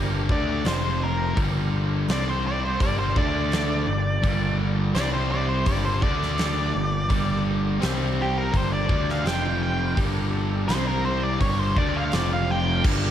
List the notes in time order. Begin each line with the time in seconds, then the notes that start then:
Already playing: G1 G2 D3 G3 D4 G4 A#4
0.29 D2 D3 A3 D4 G4 D5 A#5, kick
0.64 F1 F2 C3 F3 C4 F4 C5, snare, open hi-hat
1.02 C4 F4 A#4 C5
1.36 G1 G2 D3 G3 D4 G4 A#4, kick, open hi-hat
1.75 D4 G4 A#4
2.08 C2 C3 G3 C4 G4 C5 D5, snare, open hi-hat
2.29 C5
2.45 C4 G4 C5 D5
2.65 C5
2.80 G1 G2 D3 G3 D4 G4 A#4 D5, kick, open hi-hat
2.99 C5
3.16 D2 D3 A3 D4 A4 D5, kick
3.52 snare, open hi-hat
3.87 G1 G2 D3 A#3 D4 G4
4.22 G1 G2 D3 G3, kick, open hi-hat
4.60 A#3 D4 G4
4.94 C2 C3 G3 C4 G4 D5, snare, open hi-hat
5.13 C5
5.31 G3 C4 G4 D5
5.49 C5
5.66 G1 G2 D3 G3 A#3 D4 G4 D5, kick, open hi-hat
5.85 C5
6.02 D2 D3 A3 D4 A4 D5, kick
6.22 snare
6.38 snare, open hi-hat
6.74 G1 G2 D3 A#3 D4 G4
7.09 G1 G2 D3 G3, kick, open hi-hat
7.45 A#3 D4 G4
7.80 C2 C3 G3 C4 G4, snare, open hi-hat
8.14 G3 C4 G4
8.22 G4
8.38 A#4
8.51 G1 G2 D3 G3 A#3 D4 G4, kick, open hi-hat
8.57 C5
8.73 D5
8.87 D2 D3 G3 A3 D4 G4, kick
9.09 F5, snare
9.23 F1 F2 C3 F3 C4 F4 C5, snare, open hi-hat
9.28 G5
9.59 C4 F4 C5 G5
9.94 G1 G2 D3 G3 D4 G4 A#4, kick, open hi-hat
10.31 D4 G4 A4
10.67 C2 C3 G3 C4 G4 C5, snare, open hi-hat
10.87 A#4
11.04 C4 G4 C5
11.23 D5
11.38 G1 G2 D3 G3 D4 G4 A#4 C#5, kick, open hi-hat
11.59 C5
11.75 D2 D3 A3 D4 G4 D5 A#5, kick
11.97 F5
12.10 F1 F2 C3 F3 C4 F4 C5, snare, open hi-hat
12.14 D5
12.33 F5
12.45 C4 F4 C5
12.51 G5
12.83 G1 G2 D3 G3 D4 G4 A#4, kick, crash